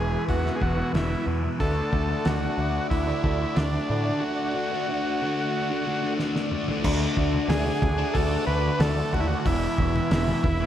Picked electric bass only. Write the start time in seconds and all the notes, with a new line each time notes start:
Already playing: E1
0.29 E2
0.61 E1
0.94 E1
1.27 E2
1.60 D2
1.93 D2
2.26 D2
2.58 D2
2.91 D2
3.24 D2
3.57 D2
3.90 A2
6.84 D2
7.17 D2
7.48 D2
7.82 D2
8.15 D2
8.47 D2
8.80 D2
9.13 D#2
9.46 E1
9.78 E1
10.11 E1
10.44 E1